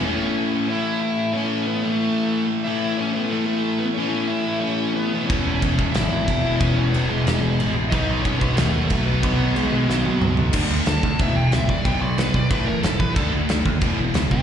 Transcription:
<<
  \new Staff \with { instrumentName = "Lead electric guitar" } { \time 4/4 \key a \lydian \tempo 4 = 183 <cis' cis''>2 <e' e''>4 <e' e''>4 | <cis' cis''>4 <b b'>8 <a a'>2 r8 | <e' e''>4 <cis' cis''>8 <b b'>8 <a a'>8 <a a'>4 <b b'>8 | <cis' cis''>4 <e' e''>4 <cis' cis''>4 <b b'>4 |
<cis' cis''>2 <e' e''>4 <e' e''>4 | <cis' cis''>4 <b b'>8 <gis gis'>2 r8 | <dis' dis''>4 <cis' cis''>8 <b b'>8 <a a'>8 <a a'>4 <b b'>8 | <b b'>4 <gis gis'>4 <fis fis'>4. r8 |
r4 a''4 e''8 g''8 e''8 d''8 | g''8 d''8 b'8 d''8 b'8 ais'8 a'8 b'8 | a'8 r2. <b' g''>8 | }
  \new Staff \with { instrumentName = "Overdriven electric guitar" } { \time 4/4 \key a \lydian r1 | r1 | r1 | r1 |
<e gis b e'>2.~ <e gis b e'>8 <e gis b e'>8 | <e gis b e'>2.~ <e gis b e'>8 <e gis b e'>8 | <b, dis fis b dis'>2.~ <b, dis fis b dis'>8 <b, dis fis b dis'>8 | <b, dis fis b dis'>2.~ <b, dis fis b dis'>8 <b, dis fis b dis'>8 |
<d a d' fis'>8 <d a d' fis'>8 <d a d' fis'>8 <d a d' fis'>8 <e gis b e'>8 <e gis b e'>8 <e gis b e'>8 <e gis b e'>8 | <b, dis fis b dis'>8 <b, dis fis b dis'>8 <b, dis fis b dis'>8 <b, dis fis b dis'>8 <a, e a cis' e'>8 <a, e a cis' e'>8 <a, e a cis' e'>8 <a, e a cis' e'>8 | <d a d' fis'>8 <d a d' fis'>8 <d a d' fis'>8 <d a d' fis'>8 <e gis b e'>8 <e gis b e'>8 <e gis b e'>8 <e gis b e'>8 | }
  \new Staff \with { instrumentName = "Overdriven electric guitar" } { \clef bass \time 4/4 \key a \lydian <a, e a>4. <a, e a>2~ <a, e a>8 | <a, e a>4. <a, e a>2~ <a, e a>8 | <a, e a>4. <a, e a>2~ <a, e a>8 | <a, e a>4. <a, e a>2 <e, b, e>8~ |
<e, b, e>4 <e, b, e>2~ <e, b, e>8 <e, b, e>8~ | <e, b, e>4 <e, b, e>2~ <e, b, e>8 r8 | <b, fis b>4. <b, fis b>2~ <b, fis b>8 | <b, fis b>4. <b, fis b>2~ <b, fis b>8 |
<d a d'>8 <d a>8 <d a>8 <d a>8 <e, b, e>8 <e, b,>8 <e, b,>8 <e, b,>8 | <b, fis b>8 <b, fis>8 <b, fis>8 <b, fis>8 <a, e a>8 <a, e>8 <a, e>8 <a, e>8 | <d a d'>8 <d a>8 <d a>8 <d a>8 <e, b, e>8 <e, b,>8 <e, b,>8 <e, b,>8 | }
  \new Staff \with { instrumentName = "Overdriven electric guitar" } { \clef bass \time 4/4 \key a \lydian <a, e a>2 <a, e a>2 | <a, e a>2 <a, e a>2 | <a, e a>2 <a, e a>2 | <a, e a>2 <a, e a>4. <e, b, e>8~ |
<e, b, e>4. <e, b, e>2 <e, b, e>8~ | <e, b, e>4. <e, b, e>2 r8 | <b, fis b>2 <b, fis b>2 | <b, fis b>2 <b, fis b>2 |
<d a d'>8 <d a>8 <d a>8 <d a>8 <e, b, e>8 <e, b,>8 <e, b,>8 <e, b,>8 | <b, fis b>8 <b, fis>8 <b, fis>8 <b, fis>8 <a, e a>8 <a, e>8 <a, e>8 <a, e>8 | <d a d'>8 <d a>8 <d a>8 <d a>8 <e, b, e>8 <e, b,>8 <e, b,>8 <e, b,>8 | }
  \new Staff \with { instrumentName = "Picked electric bass" } { \clef bass \time 4/4 \key a \lydian r1 | r1 | r1 | r1 |
e,,8 e,,8 e,,8 e,,8 gis,,8 gis,,8 e,,4 | e,,4 e,,8 e,,8 e,,8 e,,8 a,,4 | b,,8 b,,8 b,,8 b,,8 dis,8 dis,8 b,,4 | b,,4 b,,8 b,,8 b,,8 b,,8 cis,4 |
d,8 d,8 d,8 d,8 e,,8 e,,8 cis,8 b,,8 | b,,8 b,,8 b,,8 b,,8 a,,8 e,,8 e,,8 a,,8 | d,8 d,8 d,8 dis,8 e,,8 e,,8 cis,8 cis,8 | }
  \new DrumStaff \with { instrumentName = "Drums" } \drummode { \time 4/4 r4 r4 r4 r4 | r4 r4 r4 r4 | r4 r4 r4 r4 | r4 r4 r4 r4 |
<cymc bd>4 <cymc bd>8 bd8 <cymc sn>4 <cymc bd>4 | <cymc bd>4 cymc4 <cymc sn>4 cymc4 | <cymc bd>4 <cymc bd>8 bd8 <cymc sn>4 <cymc bd>4 | <cymc bd>4 cymc4 sn8 tommh8 toml8 tomfh8 |
<cymc bd>4 <cymc sn>8 bd8 <cymc bd>4 <cymc sn>8 bd8 | <cymc bd>4 <cymc sn>8 bd8 <cymc bd>4 <cymc sn>8 bd8 | <cymc bd>4 <cymc sn>8 bd8 <cymc bd>4 <cymc sn>8 bd8 | }
>>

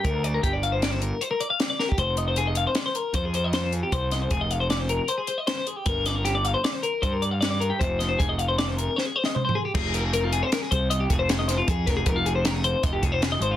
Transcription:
<<
  \new Staff \with { instrumentName = "Clean electric guitar" } { \time 5/4 \key f \dorian \tempo 4 = 155 bes'8 d''16 bes'16 g'16 d''16 f''16 c''16 d''16 c''16 bes'8 c''16 bes'16 d''16 f''16 d''16 d''16 bes'16 g'16 | c''8 ees''16 c''16 aes'16 ees''16 f''16 c''16 d''16 c''16 bes'8 c''16 aes'16 c''16 ees''16 c''16 c''16 aes'16 g'16 | c''8 ees''16 c''16 aes'16 ees''16 f''16 c''16 d''16 c''16 bes'8 c''16 aes'16 c''16 ees''16 c''16 c''16 aes'16 g'16 | bes'8 d''16 bes'16 g'16 d''16 f''16 c''16 d''16 c''16 bes'8 c''16 bes'16 d''16 f''16 d''16 d''16 bes'16 g'16 |
c''8 ees''16 c''16 aes'16 ees''16 f''16 c''16 d''16 c''16 bes'8 c''16 aes'16 c''16 ees''16 c''16 c''16 aes'16 g'16 | \key f \minor aes'8 bes'16 aes'16 bes'16 f'16 aes'16 c''16 bes'16 aes'16 c''8 ees''16 g'16 aes'16 c''16 aes'16 ees''16 c''16 f'16 | aes'8 bes'16 aes'16 bes'16 f'16 aes'16 c''16 bes'16 aes'16 c''8 ees''16 g'16 aes'16 c''16 aes'16 ees''16 c''16 f'16 | }
  \new Staff \with { instrumentName = "Picked electric bass" } { \clef bass \time 5/4 \key f \dorian d,4 g,,2 r2 | f,,2 r4 f,2 | c,4 f,,2 r2 | g,,2 r4 g,2 |
f,,4 f,,2 r2 | \key f \minor f,,2 r8 c,4 f,,4. | f,8 f,,8 f,,2 f,,8 f,,4 aes,,8 | }
  \new DrumStaff \with { instrumentName = "Drums" } \drummode { \time 5/4 <hh bd>8 hh8 <hh bd>8 hh8 <hh sn>8 hh8 hh8 hh8 \tuplet 3/2 { <hh sn>16 r16 r16 sn16 r16 bd16 } | <hh bd>8 hh8 hh8 hh8 <hh sn>8 hh8 <hh bd>8 hh8 <hh sn>8 hh8 | <hh bd>8 <hh sn>8 <hh bd>8 hh8 <hh sn>8 hh8 hh8 hh8 <hh sn>8 hh8 | <hh bd>8 <hh sn>8 <hh sn>8 hh8 <hh sn>8 hh8 <hh bd>8 hh8 <hh sn>8 hh8 |
<hh bd>8 <hh sn>8 <hh bd>8 hh8 <hh sn>8 hh8 \tuplet 3/2 { sn8 r8 sn8 toml8 tomfh8 r8 } | <cymc bd>8 hh8 hh8 hh8 <hh sn>8 <hh bd>8 hh8 <hh bd>8 <hh sn>8 <hh sn>8 | <hh bd>8 <hh bd sn>8 <hh bd>8 hh8 <hh sn>8 hh8 <hh bd>8 <hh bd>8 <hh sn>8 hh8 | }
>>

